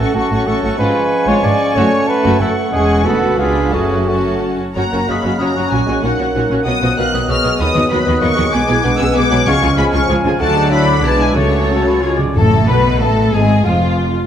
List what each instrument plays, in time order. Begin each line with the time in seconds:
Already playing: french horn section F#3 C#4, trumpet A4, cor anglais F#5
0.00 double bass section A1, bassoon A3, clarinet C#4, viola section C#4, violin section F#4 C#6, flute section F#5
0.14 double bass section A1, cello section A2, bassoon A3, clarinet C#4, viola section C#4, trumpet F#4, violin section F#4 C#6, flute section F#5, cor anglais A5
0.31 double bass section A1, cello section A2, bassoon A3, clarinet C#4, viola section C#4, violin section F#4 C#6, flute section F#5
0.46 double bass section A1, cello section A2, bassoon A3, clarinet C#4, viola section C#4, violin section F#4 C#6, trumpet A4, cor anglais F#5, flute section F#5
0.62 double bass section A1, cello section A2, bassoon A3, clarinet C#4, viola section C#4, violin section F#4 C#6, flute section F#5
0.76 double bass section G#1, cello section G#2, french horn section F3 C#4, bassoon G#3, viola section G#3, violin section F4 C#6, trumpet B4, flute section F5, cor anglais G#5
0.81 clarinet C#4
1.26 double bass section G#1, cello section G#2, viola section G#3, violin section F4, trumpet C#5
1.42 double bass section G#1, cello section G#2, viola section G#3, violin section D4, trumpet D5
1.74 double bass section F#1, cello section F#2, bassoon A3, french horn section A3, viola section A3, violin section F#4, trumpet C#5, flute section F#5
2.07 trumpet B4, cor anglais A5
2.23 double bass section F#1, cello section F#2, viola section A3, violin section F#4
2.40 double bass section F#1, cello section F#2, viola section A3, violin section E4, trumpet A4, cor anglais F#5
2.72 double bass section E1, cello section E2, bassoon G#3, viola section G#3, french horn section G#3 C#4, clarinet C#4, violin section G#4 C#6, trumpet G#4, flute section G#5
3.03 cello section D2, double bass section D2, bassoon B3, french horn section B3 F#4, viola section B3, clarinet F#4, violin section F#4 B5, trumpet A4, cor anglais F#5, flute section F#5
3.38 cello section C#2, double bass section C#2, bassoon B3, clarinet D4, viola section D4, french horn section F4, violin section F4 B5, trumpet G#4, flute section F5, cor anglais F5
3.72 double bass section F#1, cello section F#2, french horn section A3 F#4, bassoon A3, clarinet C#4, viola section C#4, violin section F#4 A5, trumpet G#4, cor anglais C#5, flute section F#5
4.07 bassoon A3, clarinet C#4, viola section C#4, trumpet F#4, violin section F#4 A5, flute section F#5
4.76 double bass section F#1, cello section F#2, french horn section F#3 C#4, bassoon F#3, clarinet A#3, viola section C#4 F#4, violin section F#4 C#5 A#5, cor anglais F#5, flute section F#6
4.92 double bass section F#1, cello section F#2, bassoon A#3, viola section C#4 F#4, violin section F#4 C#5
5.08 double bass section F#1, cello section F#2, bassoon G#3, viola section C#4 F#4, violin section F#4 C#5 B5, cor anglais F5, flute section D#6
5.23 double bass section F#1, cello section F#2, viola section C#4 F#4, violin section F#4 C#5, flute section F6
5.38 double bass section F#1, cello section F#2, bassoon F#3, clarinet C#4, viola section C#4 F#4, violin section F#4 C#5 A#5, cor anglais D#5, flute section F#6
5.55 double bass section F#1, cello section F#2, viola section C#4 F#4, violin section F#4 C#5, cor anglais C#5
5.71 double bass section A#1, cello section A#2, bassoon F#3, viola section C#4 F#4, violin section F#4 C#5 G#5, cor anglais C#5
5.86 double bass section A#1, cello section A#2, bassoon G#3, viola section C#4 F#4, violin section F#4 C#5
6.03 double bass section A#1, cello section A#2, bassoon A#3, viola section C#4 F#4, clarinet D#4, violin section F#4 C#5 F#5, cor anglais F#5, flute section F#6
6.18 double bass section A#1, cello section A#2, clarinet C#4, viola section C#4 F#4, violin section F#4 C#5
6.34 double bass section A#1, cello section A#2, viola section C#4 F#4, clarinet D#4, violin section F#4 C#5, flute section F#6
6.49 double bass section A#1, cello section A#2, viola section C#4 F#4, clarinet C#4, violin section F#4 C#5
6.65 double bass section B1, cello section B2, bassoon F#3, french horn section F#3 B3, viola section B3 F#4, clarinet B3, violin section B4 D#5 D#6, cor anglais F#5, flute section F#6
6.81 double bass section B1, cello section B2, bassoon F3, viola section B3 F#4, violin section B4 D#5
6.97 double bass section B1, cello section B2, bassoon D#3, viola section B3 F#4, violin section B4 D#5 F#6, cor anglais F5
7.12 double bass section B1, cello section B2, viola section B3 F#4, violin section B4 D#5, cor anglais D#5
7.28 double bass section B1, cello section B2, bassoon G#3, viola section B3 F#4, violin section B4 D#5 F6, cor anglais C#5, flute section D#6
7.43 double bass section B1, cello section B2, viola section B3 F#4, violin section B4 D#5
7.59 double bass section D#2, cello section D#3, viola section B3 F#4, clarinet B3, violin section B4 D#5 D#6, cor anglais B4, flute section D#6
7.73 double bass section D#2, cello section D#3, viola section B3 F#4, violin section B4 D#5, cor anglais D#5
7.91 double bass section D#2, cello section D#3, bassoon F#3, viola section B3 F#4, violin section B4 D#5 B5, flute section F#6
8.06 double bass section D#2, cello section D#3, bassoon B3, viola section B3 F#4, violin section B4 D#5
8.21 double bass section D#2, cello section D#3, bassoon A#3, viola section B3 F#4, violin section B4 D#5 C#6
8.36 double bass section D#2, cello section D#3, bassoon G#3, viola section B3 F#4, violin section B4 D#5
8.52 double bass section B1, cello section B2, viola section G#3 G#4, french horn section G#3 B3, clarinet B3, violin section B4 G#5 D6, cor anglais G#5, flute section G#6
8.67 double bass section B1, cello section B2, viola section G#3 G#4, clarinet E4, violin section B4 G#5
8.83 double bass section B1, cello section B2, viola section G#3 G#4, bassoon B3, clarinet D4, violin section B4 G#5, cor anglais F#5
8.97 double bass section B1, cello section B2, viola section G#3 G#4, clarinet C#4, violin section B4 G#5 E6
9.12 viola section G#3 G#4, bassoon B3, violin section B4 G#5 D6, flute section G#6
9.16 double bass section B1, cello section B2, clarinet B3
9.29 double bass section B1, cello section B2, bassoon F#3, viola section G#3 G#4, violin section B4 G#5
9.45 double bass section C#2, timpani C#3, cello section C#3, french horn section F3 C#4, viola section G#3 F4, bassoon G#3, clarinet C#4, violin section G#4 G#5 C#6, cor anglais F5, flute section G#6
9.62 double bass section C#2, cello section C#3, viola section G#3 F4, violin section G#4 G#5, cor anglais F5
9.76 double bass section C#2, cello section C#3, viola section G#3 F4, bassoon G#3, violin section G#4 G#5 B5, cor anglais G#5, flute section F6
9.92 double bass section C#2, cello section C#3, viola section G#3 F4, violin section G#4 G#5 C#6
10.08 double bass section C#2, cello section C#3, bassoon F3, viola section G#3 F4, violin section G#4 G#5, cor anglais G#5
10.24 double bass section C#2, cello section C#3, viola section G#3 F4, violin section G#4 G#5
10.40 double bass section D2, cello section D3, french horn section F#3 D4, viola section F#3 F#4, bassoon A3, clarinet D4, violin section A4 D5 A5, cor anglais F#5, flute section F#6
10.55 bassoon G#3
10.71 bassoon F#3, clarinet D4, viola section E4, cor anglais E5, violin section B5, flute section F#6
10.86 cor anglais D5
11.03 double bass section B1, cello section B2, french horn section G#3, viola section G#3 D4, bassoon B3, violin section B4 D5 A5, flute section G#6
11.21 viola section E4, violin section G#5
11.36 double bass section C#2, cello section C#3, timpani C#3, viola section F#3 F#4, bassoon A3, french horn section A3 F#4, clarinet F#4, violin section A4 C#5, cor anglais C#5, flute section A6
11.71 cor anglais A4
11.88 cor anglais B4
12.01 timpani C#3, viola section G#3 F4, french horn section G#3 F4, bassoon C#4, clarinet F4, violin section G#4 C#5, cor anglais C#5, flute section G#6
12.11 timpani C#3
12.17 timpani C#3, cor anglais D5
12.26 timpani C#3
12.35 double bass section A1, timpani F#2, cello section A2, french horn section A3, violin section A4, viola section A4, flute section A5
12.67 double bass section B1, cello section B2, french horn section B3, violin section B4, viola section B4, flute section B5
13.00 double bass section A1, cello section A2, french horn section A3, violin section A4, viola section A4, flute section A5
13.32 double bass section G#1, cello section G#2, french horn section G#3, violin section G#4, viola section G#4, flute section G#5
13.64 double bass section F1, cello section F2, french horn section F3, violin section F4, viola section F4, flute section F5